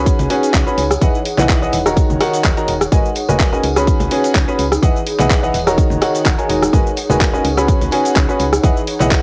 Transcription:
Already playing: C#2 C#4 D#4 F#4 G#4 B4 C#5 F#5 B5
0.06 kick, closed hi-hat, tambourine, cabasa
0.19 C#2, open hi-hat, high conga, cabasa
0.30 C#4 F#4 G#4 B4 C#5 G#5, open hi-hat, tambourine
0.43 closed hi-hat, tambourine, cabasa
0.54 C#2, kick, clap, closed hi-hat, cabasa
0.67 C#4 F#4 G#4 B4 C#5 B5, cabasa
0.78 C#2, open hi-hat, tambourine
0.90 cross-stick, closed hi-hat, tambourine, cabasa
1.01 E1 E3 E4 G#4 B4 D#5 F#5, kick, closed hi-hat, tambourine, cabasa
1.15 cabasa
1.25 open hi-hat, tambourine
1.38 B1 E3 E4 G#4 B4 D#5 F#5, clap, tambourine, high conga, cabasa
1.49 kick, clap, closed hi-hat, tambourine, cabasa
1.62 E3 E4 G#4 B4 D#5 F#5, cabasa
1.72 D#1, open hi-hat, tambourine
1.86 D#3 D#4 F#4 A#4 C#5 A#5, cross-stick, closed hi-hat, tambourine, cabasa
1.96 kick, closed hi-hat, tambourine, cabasa
2.10 D#1, high conga, cabasa
2.21 D#3 D#4 F#4 A#4 C#5 F#5, cross-stick, open hi-hat, tambourine
2.34 open hi-hat, tambourine, cabasa
2.44 D#1, kick, clap, closed hi-hat, cabasa
2.57 D#3 D#4 F#4 A#4 C#5 A#5, closed hi-hat, cabasa
2.68 D#1, open hi-hat, tambourine
2.81 cross-stick, closed hi-hat, tambourine, cabasa
2.92 G#1 G#3 D#4 F#4 A#4 B4 D#5 G#5, kick, closed hi-hat, tambourine, cabasa
3.05 cabasa
3.15 open hi-hat, tambourine
3.29 D#1 G#3 F#4 A#4 B4 D#5 G#5, tambourine, high conga, cabasa
3.40 kick, clap, closed hi-hat, cabasa
3.53 C#4 F#4 A#4 B4 D#5 G#5, cabasa
3.63 C#2, open hi-hat, tambourine
3.75 C#4 F#4 G#4 B4 C#5 B5, cross-stick, closed hi-hat, tambourine, cabasa
3.87 kick, closed hi-hat, tambourine, cabasa
4.00 C#2, open hi-hat, high conga, cabasa
4.11 C#4 F#4 G#4 B4 C#5 G#5, open hi-hat, tambourine
4.18 C#5 F#5
4.24 closed hi-hat, tambourine, cabasa
4.35 C#2, kick, clap, closed hi-hat, cabasa
4.48 C#4 F#4 G#4 B4 C#5 B5, cabasa
4.59 C#2, open hi-hat, tambourine
4.72 cross-stick, closed hi-hat, tambourine, cabasa
4.82 E1 E3 E4 G#4 B4 D#5 F#5, kick, closed hi-hat, cabasa
4.96 cabasa
5.06 open hi-hat, tambourine
5.19 B1 E3 E4 G#4 B4 D#5 F#5, clap, tambourine, high conga, cabasa
5.30 kick, clap, closed hi-hat, cabasa
5.43 E3 E4 G#4 B4 D#5 F#5, cabasa
5.54 D#1, open hi-hat, tambourine
5.67 D#3 D#4 F#4 A#4 C#5 A#5, cross-stick, closed hi-hat, tambourine, cabasa
5.78 kick, closed hi-hat, cabasa
5.90 D#1, high conga, cabasa
6.01 D#3 D#4 F#4 A#4 C#5 F#5, cross-stick, open hi-hat, tambourine
6.15 open hi-hat, tambourine, cabasa
6.25 D#1, kick, clap, closed hi-hat, cabasa
6.38 D#3 D#4 F#4 A#4 C#5 G#5, closed hi-hat, cabasa
6.49 D#1 G#3 D#4 F#4 A#4 C#5 G#5, open hi-hat, tambourine
6.61 cross-stick, closed hi-hat, tambourine, cabasa
6.73 G#1 G#3 F#4 A#4 B4 D#5 G#5, kick, closed hi-hat, tambourine, cabasa
6.87 cabasa
6.97 open hi-hat, tambourine
7.10 D#1 G#3 F#4 A#4 B4 D#5 G#5, tambourine, high conga, cabasa
7.21 kick, clap, closed hi-hat, cabasa
7.33 C#4 F#4 A#4 B4 D#5 G#5, cabasa
7.44 C#2, open hi-hat, tambourine
7.57 C#4 F#4 G#4 B4 C#5 B5, cross-stick, closed hi-hat, tambourine, cabasa
7.68 kick, closed hi-hat, tambourine, cabasa
7.81 C#2, open hi-hat, high conga, cabasa
7.91 C#4 F#4 G#4 B4 C#5 G#5, open hi-hat, tambourine
8.05 closed hi-hat, tambourine, cabasa
8.16 C#2, kick, clap, closed hi-hat, cabasa
8.29 C#4 F#4 G#4 B4 C#5 B5, cabasa
8.39 C#2, open hi-hat, tambourine
8.53 cross-stick, closed hi-hat, tambourine, cabasa
8.63 E1 E3 E4 G#4 B4 D#5 F#5, kick, closed hi-hat, tambourine, cabasa
8.77 cabasa
8.87 open hi-hat, tambourine
9.00 B1 E3 E4 G#4 B4 D#5 F#5, clap, tambourine, high conga, cabasa
9.11 kick, clap, closed hi-hat, tambourine, cabasa

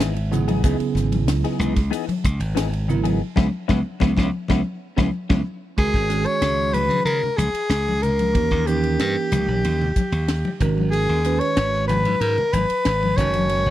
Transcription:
Already playing: G#1
0.00 E3 B3 D#4 G#4 E5, snare, hi-hat pedal, ride
0.16 muted clean electric guitar stroke, ride
0.31 C#3 F#3 B3 E4 G#4 F#5, muted clean electric guitar stroke, hi-hat pedal, low conga
0.48 B3 D#4 G#4, ride, high conga
0.64 C#2 C#3 E3 F#3 B3 D#4 E4 G#4, kick, hi-hat pedal, ride
0.79 muted clean electric guitar stroke, muted slap bass stroke, ride
0.95 G#1, muted clean electric guitar stroke, snare, hi-hat pedal
1.12 ride, high conga
1.28 C#2, muted clean electric guitar stroke, snare, hi-hat pedal, ride
1.44 B3 D#4 G#4, muted slap bass stroke, snare, ride
1.59 C#2 E3 B3 D#4 G#4, hi-hat pedal, low conga
1.76 muted clean electric guitar stroke, kick, snare, ride
1.91 E3 B3 D#4 G#4, hi-hat pedal, ride
2.07 muted clean electric guitar stroke, muted slap bass stroke, ride, high conga
2.24 C#2, muted clean electric guitar stroke, kick, hi-hat pedal
2.40 G#1, ride
2.55 E3 B3 D#4 G#4, snare, hi-hat pedal, ride
2.72 muted clean electric guitar stroke, ride
2.88 C#3 F#3 B3 E4 A#4, muted clean electric guitar stroke, hi-hat pedal, low conga
3.04 B3 D#4 G#4, ride, high conga
3.36 C#2 G#3 B3 C#4 E4, kick, snare, high conga
3.68 C#2 G#3 B3 C#4 E4, kick, snare, high conga
4.00 C#2 G#3 B3 C#4 E4, kick, snare, high conga
4.16 C#2 G#3 B3 C#4 E4, kick, snare, high conga
4.48 C#2 G#3 B3 C#4 E4, kick, snare, high conga
4.97 C#2 G#3 B3 C#4 E4, kick, snare, high conga
5.29 C#2 G#3 B3 C#4 E4, kick, snare, high conga
5.77 C#2 D#3 G#3 C#4 F#4 G#4 A#4, kick, ride
5.94 G#1, kick, snare
6.09 D#3 G#3 C#4 F#4 G#4, hi-hat pedal, ride
6.26 C#5, ride
6.42 C#2, snare, ride
6.73 C#2 B4, hi-hat pedal, ride, high conga, low conga
6.89 C#3, ride, high conga
7.05 C#3 A#4, ride
7.23 low conga
7.36 C#2 G#4, hi-hat pedal, ride, high conga
7.54 ride
7.69 C#2, snare, ride
7.88 high conga
8.02 A#4, hi-hat pedal, ride, low conga
8.19 ride, high conga
8.33 D#2 E3 A#3 C#4 D#4 G4, kick, ride
8.51 D#2, kick, snare
8.66 E3 A#3 C#4 D#4 G4 A#4, hi-hat pedal, ride
8.83 ride
8.99 G2, snare, ride
9.32 C#2, hi-hat pedal, ride, high conga, low conga
9.48 A#1, high conga
9.64 D#2, ride
9.81 low conga
9.96 kick, hi-hat pedal, ride, high conga
10.12 D#2, ride
10.28 snare, ride
10.45 high conga
10.60 G#1 D#3 G#3 C#4 F#4 A#4, kick, hi-hat pedal, ride, low conga
10.78 high conga
10.90 G#4, ride
11.09 D#2
11.24 D#3 G#3 C#4 F#4 B4, hi-hat pedal, ride
11.39 C#5, ride
11.57 G#1, snare, ride
11.73 snare
11.88 G#1 B4, hi-hat pedal, ride, high conga, low conga
12.05 G#2, ride, high conga
12.20 G#2 A#4, ride
12.38 low conga
12.52 G#1 B4, hi-hat pedal, ride, high conga
12.70 muted slap bass stroke, ride
12.85 G#1, snare, ride
13.03 high conga
13.17 F#1 D#3 G#3 C#4 F#4 A#4 C#5, kick, snare, hi-hat pedal, ride, low conga
13.34 ride, high conga
13.49 ride
13.66 F#1

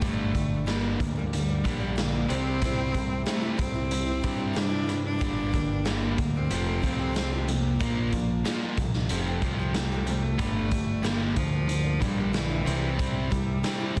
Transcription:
Already playing: A3
0.01 G1 G2 D3 G3 D4, kick, closed hi-hat
0.33 G1 G2 D3 G3 D4, kick, closed hi-hat
0.66 G2 D3 G3 A#3 D4, snare, closed hi-hat
0.82 G3 A#3 D4
0.99 D2 G2 D3, muted steel-string acoustic guitar stroke, kick, closed hi-hat
1.16 G3 A#3 D4
1.33 G2 D3 G3, closed hi-hat
1.49 G3 A#3 D4
1.64 A#1 G2 D3 G3 A#3 D4, kick, closed hi-hat
1.80 G3 A#3 D4
1.96 G2 D3 G3 A#3 D4, snare, closed hi-hat
2.12 G3 A#3 D4
2.29 C2 C3 G3 C4 E4, closed hi-hat
2.62 C3 G3 C4 E4, kick, closed hi-hat
2.94 C2 C3 G3 C4 E4, kick, closed hi-hat
3.26 C3 G3 A3 C4 E4, snare, closed hi-hat
3.42 G3 C4 E4
3.58 C2 C3 G3 C4, muted steel-string acoustic guitar stroke, kick, closed hi-hat
3.74 G3 C4 E4
3.91 C3 G3, closed hi-hat
4.06 G3 C4 E4
4.21 G2 C3 G3 C4 E4, kick, closed hi-hat
4.38 G3 C4 E4
4.53 C3 G3 C4 E4, snare, closed hi-hat
4.58 D4
4.70 G3 C4 E4
4.86 C3 G3 C4 E4, closed hi-hat
5.06 D4
5.19 G1 G2 D3 G3 A#3 D4, kick, closed hi-hat
5.52 G1 G2 D3 G3 A#3 D4, kick, closed hi-hat
5.85 G2 D3 G3 A#3 D4, snare, closed hi-hat
6.01 G3 A#3 D4
6.18 D2 G2 D3, muted steel-string acoustic guitar stroke, kick, closed hi-hat
6.34 G3 A#3 C4 D4
6.50 F1 F2 C3 F3 A3 C4 G4, closed hi-hat
6.65 A3 C4 G4
6.82 C2 F2 C3 F3 A3 C4 G4, kick, closed hi-hat
6.99 A3 C4 G4
7.15 F2 C3 F3 A3 C4 G4, snare, closed hi-hat
7.32 C4 G4
7.47 F2 C3 F3 A#3 C4 G4, closed hi-hat
7.79 A#1 A#2 F3 A#3 D4 F4, kick, closed hi-hat
8.12 A#1 A#2 F3 A#3 D4 F4, kick, closed hi-hat
8.45 A#2 F3 A#3 D4 F4, snare, closed hi-hat
8.62 A#3 D4 F4
8.77 C2 A#2 F3, muted steel-string acoustic guitar stroke, kick, closed hi-hat
8.94 A#3 D4 F4, snare
9.09 F1 F2 C3 F3 A3 C4, closed hi-hat
9.14 G4
9.28 A3 C4 G4
9.42 C2 F2 C3 F3 A3 C4, kick, closed hi-hat
9.46 G4
9.59 A3 C4 G4
9.74 F2 C3 F3 G3 A3 C4, snare, closed hi-hat
9.79 G4
9.92 A3 C4 G4
10.06 F2 C3 F3 A3 C4 G4, closed hi-hat
10.23 A3
10.39 G1 G2 D3 G3 D4, kick, closed hi-hat
10.71 G1 G2 D3 G3 D4, kick, closed hi-hat
11.03 G2 D3 G3 A#3 D4, snare, closed hi-hat
11.19 G3 A#3 D4
11.35 D2 G2 D3 F3, muted steel-string acoustic guitar stroke, kick, closed hi-hat
11.52 G3 A#3 D4
11.67 G2 D3, closed hi-hat
11.84 G3 A#3 D4
12.00 A#1 G2 D3 G3 A#3, kick, closed hi-hat
12.04 D4
12.17 G3 A#3 D4
12.33 G2 D3 E3 G3 A#3 D4, snare, closed hi-hat
12.50 G3 A#3 D4
12.66 C2 C3 G3 C4 E4, closed hi-hat
12.99 C3 G3 C4 E4, kick, closed hi-hat
13.30 C2 C3 G3 C4 E4, kick, closed hi-hat
13.63 C3 G3 C4 E4, snare, closed hi-hat
13.80 G3 C4 E4
13.96 C3 G3, muted steel-string acoustic guitar stroke, kick

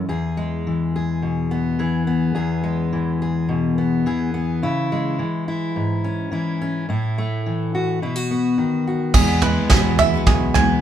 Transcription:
Already playing: E3
0.08 E2 G#4
0.37 G#3
0.67 E3
0.96 G#4
1.22 B2
1.51 B3
1.79 E3 G#4
2.07 B3
2.35 E2 G#4
2.64 G#3
2.93 E3
3.22 G#4
3.49 B2
3.78 B3
4.06 E3 G#4
4.34 B3
4.62 C#3 E4
4.92 G#3
5.19 E3
5.48 E4
5.76 G#2
6.04 C#4
6.31 E3 E4
6.62 C#4
6.89 A2 E4
7.18 A3
7.46 E3
7.75 F#4
8.02 B2 E4
8.16 F#4
8.31 B3
8.58 D#3
8.87 F#4
9.14 E2 B2 E3 G#3 B3 E4 G#4, kick, floor tom, crash
9.42 E3 G#3 B3 E4 B4, floor tom
9.70 E2 B2 E3 G#3 B3 E4 F#4 G#4, kick, snare, floor tom
9.99 E3 G#3 B3 E4 E5, floor tom
10.14 E3 G#3 B3 E4
10.27 B1 B2 G#4, kick, floor tom
10.54 E3 G#3 B3 E4 G#5, floor tom

